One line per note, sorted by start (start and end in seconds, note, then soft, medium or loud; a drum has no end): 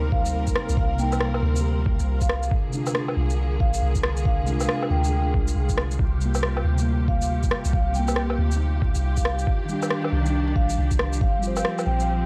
0.00 0.55 D2 medium
0.00 0.94 C3 medium
0.00 2.48 G3 medium
0.00 0.97 A#3 medium
0.00 2.48 C4 medium
0.00 0.99 D#4 loud
0.00 12.26 F4 medium
0.00 2.48 A#4 medium
0.00 12.26 F5 medium
0.12 0.35 F5 medium
0.12 kick loud
0.26 shaker medium
0.47 kick medium
0.47 shaker soft
0.56 cross-stick loud
0.69 1.42 C2 medium
0.69 shaker medium
0.77 0.98 F5 medium
0.77 kick loud
0.95 1.51 C3 loud
0.95 1.53 A#3 medium
0.95 shaker soft
0.99 1.55 D#4 loud
0.99 1.22 G5 medium
1.12 low woodblock medium
1.12 shaker medium
1.21 cross-stick loud
1.34 low woodblock medium
1.43 1.98 D2 medium
1.52 2.48 C3 medium
1.52 2.50 A#3 medium
1.56 shaker medium
1.60 2.52 G4 medium
1.86 kick loud
2.00 2.50 C2 medium
2.00 shaker medium
2.21 2.51 F5 medium
2.21 kick medium
2.21 shaker soft
2.29 cross-stick loud
2.43 shaker medium
2.51 5.96 D3 medium
2.51 5.96 A#3 medium
2.51 5.96 G#4 medium
2.51 kick loud
2.69 3.25 C3 medium
2.69 3.26 G#3 medium
2.69 shaker soft
2.74 3.28 D4 medium
2.74 3.29 F4 loud
2.87 low woodblock medium
2.87 shaker medium
2.95 cross-stick loud
3.08 low woodblock medium
3.17 3.59 C2 loud
3.30 shaker medium
3.60 3.81 A#1 loud
3.60 3.83 F5 medium
3.60 kick loud
3.74 shaker medium
3.82 4.68 C2 loud
3.95 kick medium
3.95 shaker soft
4.03 cross-stick loud
4.17 shaker medium
4.25 4.45 F5 medium
4.25 kick loud
4.43 4.99 C3 loud
4.43 5.01 G#3 medium
4.43 shaker soft
4.49 5.02 D4 medium
4.49 5.03 F4 loud
4.60 4.83 F5 medium
4.60 low woodblock soft
4.60 shaker medium
4.69 cross-stick loud
4.83 low woodblock medium
4.90 5.33 D2 medium
4.90 5.34 G5 medium
5.01 5.97 C3 medium
5.01 5.98 G#3 medium
5.01 shaker soft
5.06 5.99 D4 medium
5.06 6.01 G#4 medium
5.34 5.55 C2 loud
5.34 kick loud
5.48 shaker medium
5.56 5.98 C2 medium
5.69 kick medium
5.69 shaker soft
5.78 cross-stick loud
5.91 shaker medium
5.99 6.63 C2 loud
5.99 9.44 C3 medium
5.99 12.26 G4 medium
5.99 kick loud
6.17 6.72 C3 medium
6.21 6.75 G3 medium
6.21 6.77 A#3 medium
6.21 shaker soft
6.35 low woodblock soft
6.35 shaker medium
6.43 cross-stick loud
6.57 low woodblock medium
6.65 7.50 D2 medium
6.74 7.90 C3 medium
6.78 7.93 G3 medium
6.78 7.95 A#3 loud
6.78 shaker medium
7.08 7.31 F5 medium
7.08 kick loud
7.22 shaker medium
7.43 kick medium
7.43 shaker soft
7.51 cross-stick loud
7.65 8.37 C2 medium
7.65 shaker medium
7.73 7.94 F5 medium
7.73 kick loud
7.91 8.47 C3 loud
7.91 8.18 G5 medium
7.91 shaker soft
7.95 8.49 G3 medium
7.95 8.51 A#3 loud
8.08 low woodblock medium
8.08 shaker medium
8.16 cross-stick loud
8.30 low woodblock medium
8.38 8.94 D2 loud
8.48 9.44 C3 medium
8.48 9.46 G3 medium
8.48 shaker medium
8.56 9.48 D#4 medium
8.82 kick loud
8.95 9.46 C2 loud
8.95 shaker medium
9.17 9.47 F5 medium
9.17 kick medium
9.17 shaker soft
9.25 cross-stick loud
9.39 shaker medium
9.46 11.19 D#3 medium
9.46 11.19 D4 medium
9.46 kick loud
9.65 10.21 D#3 medium
9.65 10.23 G3 medium
9.65 shaker soft
9.73 10.25 D4 medium
9.83 low woodblock medium
9.83 shaker medium
9.91 cross-stick loud
10.04 low woodblock medium
10.12 10.55 C2 loud
10.22 11.18 D#3 loud
10.26 11.20 G3 medium
10.26 shaker medium
10.30 11.22 D4 loud
10.56 10.76 A#1 loud
10.56 10.79 F5 medium
10.56 kick loud
10.70 shaker medium
10.78 11.23 C2 loud
10.91 kick medium
10.91 shaker soft
10.99 cross-stick loud
11.13 shaker medium
11.21 11.64 G1 loud
11.21 12.26 F3 medium
11.21 12.26 C4 medium
11.21 11.41 F5 medium
11.21 kick loud
11.39 11.95 G3 loud
11.39 shaker soft
11.43 11.97 F4 medium
11.47 11.99 C5 loud
11.57 11.79 F5 medium
11.57 low woodblock medium
11.57 shaker medium
11.65 cross-stick loud
11.79 low woodblock medium
11.79 shaker soft
11.86 12.26 A#1 medium
11.86 12.26 G5 medium
11.98 12.26 G3 medium
11.98 12.26 F4 medium
11.98 12.26 F5 medium
11.98 shaker medium